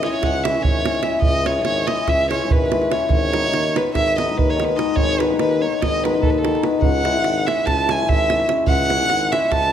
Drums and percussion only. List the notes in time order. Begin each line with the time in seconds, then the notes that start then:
0.03 davul high
0.13 davul high
0.23 davul high, davul low
0.34 davul high
0.45 davul high
0.55 davul high
0.64 davul low
0.85 davul high
0.95 davul high
1.03 davul high
1.22 davul low
1.46 davul high
1.65 davul high
1.88 davul high
1.98 davul high
2.08 davul high, davul low
2.31 davul high
2.42 davul high
2.51 davul low
2.72 davul high
2.82 davul high
2.92 davul high
3.10 davul low
3.33 davul high
3.54 davul high
3.76 davul high
3.87 davul high
3.95 davul high, davul low
4.08 davul high
4.18 davul high
4.29 davul high
4.39 davul low
4.60 davul high
4.79 davul high
4.97 davul low
5.09 davul high
5.20 davul high
5.31 davul high
5.39 davul high
5.51 davul high
5.73 davul high
5.82 davul high, davul low
6.05 davul high
6.14 davul high
6.23 davul low
6.34 davul high
6.45 davul high
6.55 davul high
6.63 davul high
6.82 davul low
7.05 davul high
7.24 davul high
7.48 davul high
7.57 davul high
7.67 davul high, davul low
7.79 davul high
7.89 davul high
8.00 davul high
8.09 davul low
8.30 davul high
8.40 davul high
8.49 davul high
8.67 davul low
8.90 davul high
9.10 davul high
9.33 davul high
9.42 davul high
9.52 davul high, davul low
9.63 davul high